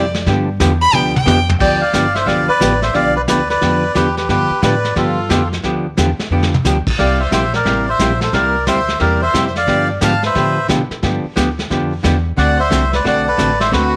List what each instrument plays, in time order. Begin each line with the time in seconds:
Already playing: upright bass F2, fiddle D5
0.15 snare
0.26 upright bass G2, hollow-body jazz guitar D3 F3 B3 D4 G4, brush sweep, kick, snare
0.60 upright bass E2, hollow-body jazz guitar D3 F3 B3 D4 G4, kick, snare, hi-hat pedal
0.82 fiddle B5
0.93 upright bass D2, hollow-body jazz guitar D3 F3 B3 D4 G4, fiddle G5, mid tom
1.16 fiddle G5, mid tom
1.26 upright bass F2, hollow-body jazz guitar D3 F3 B3 D4 G4, hi-hat pedal, high tom
1.49 floor tom
1.60 upright bass D2, hollow-body jazz guitar D3 F3 B3 D4 G4, fiddle D5, melodica D5 G5, brush sweep, kick, snare, crash
1.81 melodica D5 F5, fiddle D5
1.93 upright bass G1, hollow-body jazz guitar D3 F3 B3 D4 G4, kick, snare, hi-hat pedal
2.15 fiddle C5, melodica C5 E5, snare
2.26 upright bass B1, hollow-body jazz guitar D3 F3 B3 D4 G4, melodica D5 F5, fiddle D5, brush sweep, kick, snare
2.48 fiddle B4, melodica B4 D5, muted upright bass stroke
2.60 upright bass A1, hollow-body jazz guitar D3 F3 B3 D4 G4, kick, snare, hi-hat pedal
2.82 fiddle C5, melodica C5 E5, snare
2.94 upright bass B1, hollow-body jazz guitar D3 F3 B3 D4 G4, fiddle D5, melodica D5 F5, brush sweep, kick, snare
3.16 fiddle B4, melodica B4 D5
3.28 upright bass D2, hollow-body jazz guitar D3 F3 B3 D4 G4, melodica B4 D5, fiddle B4, kick, snare, hi-hat pedal
3.50 fiddle B4, melodica B4 D5, snare
3.61 upright bass F2, hollow-body jazz guitar D3 F3 B3 D4 G4, brush sweep, kick, snare
3.95 upright bass E2, hollow-body jazz guitar D3 F3 B3 D4 G4, melodica G4 B4, fiddle G4, kick, snare, hi-hat pedal
4.17 fiddle G4, melodica G4 B4, snare
4.29 upright bass G2, hollow-body jazz guitar D3 F3 B3 D4 G4, fiddle G4, melodica G4 B4, brush sweep, kick, snare
4.50 muted upright bass stroke
4.62 upright bass A2, hollow-body jazz guitar D3 F3 B3 D4 G4, fiddle B4, melodica B4 D5, kick, snare, hi-hat pedal
4.85 snare
4.96 upright bass G2, hollow-body jazz guitar D3 F3 B3 D4 G4, melodica F4 A4, fiddle F4, brush sweep, kick, snare
5.29 upright bass F2, hollow-body jazz guitar D3 F3 B3 D4 G4, kick, snare, hi-hat pedal
5.53 snare
5.63 upright bass D2, hollow-body jazz guitar D3 F3 B3 D4 G4, brush sweep, kick, snare
5.97 upright bass E2, hollow-body jazz guitar D3 F3 B3 D4 G4, kick, snare, hi-hat pedal
6.19 muted upright bass stroke, snare
6.30 upright bass F2, hollow-body jazz guitar D3 F3 B3 D4 G4
6.43 snare
6.54 mid tom
6.65 upright bass D2, hollow-body jazz guitar D3 F3 B3 D4 G4, snare, hi-hat pedal
6.87 kick, crash
6.98 upright bass C2, hollow-body jazz guitar C3 G3 A#3 E4 G4, melodica D5 F5, fiddle D5, brush sweep, kick, snare
7.20 melodica C5 E5, fiddle C5
7.31 upright bass A#1, hollow-body jazz guitar C3 G3 A#3 E4 G4, fiddle C5, melodica C5 E5, kick, snare, hi-hat pedal
7.54 melodica A#4 D5, fiddle A#4, snare
7.65 upright bass A1, hollow-body jazz guitar C3 G3 A#3 E4 G4, brush sweep, kick, snare
7.89 melodica C5 E5, fiddle C5
7.99 upright bass A#1, hollow-body jazz guitar C3 G3 A#3 E4 G4, kick, snare, hi-hat pedal
8.21 fiddle A4, melodica A4 C5, snare
8.33 upright bass C2, hollow-body jazz guitar C3 G3 A#3 E4 G4, melodica A#4 D5, fiddle A#4, brush sweep, kick, snare
8.67 upright bass D2, hollow-body jazz guitar C3 G3 A#3 E4 G4, melodica C5 E5, fiddle C5, kick, snare, hi-hat pedal
8.88 snare
9.00 upright bass E2, hollow-body jazz guitar C3 G3 A#3 E4 G4, melodica A#4 D5, fiddle A#4, brush sweep, kick, snare
9.22 melodica C5 E5, fiddle C5
9.34 upright bass F2, hollow-body jazz guitar C3 G3 A#3 E4 G4, kick, snare, hi-hat pedal
9.46 fiddle C5, melodica E5
9.56 melodica D5 F5, fiddle D5, snare
9.67 upright bass G2, hollow-body jazz guitar D3 F3 B3 D4 G4, brush sweep, kick, snare
10.01 upright bass G#2, hollow-body jazz guitar D3 F3 B3 D4 G4, fiddle F5, melodica F5 A5, kick, snare, hi-hat pedal
10.23 fiddle B4, melodica C5 E5, snare
10.35 upright bass A2, hollow-body jazz guitar D3 F3 B3 D4 G4, brush sweep, kick, snare
10.68 upright bass B2, hollow-body jazz guitar D3 F3 B3 D4 G4, kick, snare, hi-hat pedal
10.90 muted upright bass stroke, snare
11.03 upright bass G2, hollow-body jazz guitar D3 F3 B3 D4 G4, brush sweep, kick, snare
11.24 muted upright bass stroke
11.36 upright bass D2, hollow-body jazz guitar D3 F3 B3 D4 G4, kick, snare, hi-hat pedal
11.59 snare
11.70 upright bass F2, hollow-body jazz guitar D3 F3 B3 D4 G4, brush sweep, kick, snare
12.03 upright bass E2, hollow-body jazz guitar D3 F3 B3 D4 G4, kick, snare, hi-hat pedal
12.37 upright bass D2, hollow-body jazz guitar D3 A3 C4 F#4 A4, fiddle D5, melodica D5 F#5, brush sweep, kick, snare
12.59 fiddle C5, melodica C5 E5
12.70 upright bass C2, hollow-body jazz guitar D3 A3 C4 F#4 A4, kick, snare, hi-hat pedal
12.93 fiddle B4, melodica B4 D5, snare
13.04 upright bass B1, hollow-body jazz guitar D3 A3 C4 F#4 A4, fiddle D5, melodica D5 F#5, brush sweep, kick, snare
13.27 fiddle A4, melodica B4 D5
13.37 upright bass A1, hollow-body jazz guitar D3 A3 C4 F#4 A4, kick, snare, hi-hat pedal
13.60 melodica C5 E5, fiddle C5, snare
13.71 upright bass D2, hollow-body jazz guitar D3 A3 C4 F#4 A4, melodica F#4 B4, fiddle F#4, brush sweep, kick, snare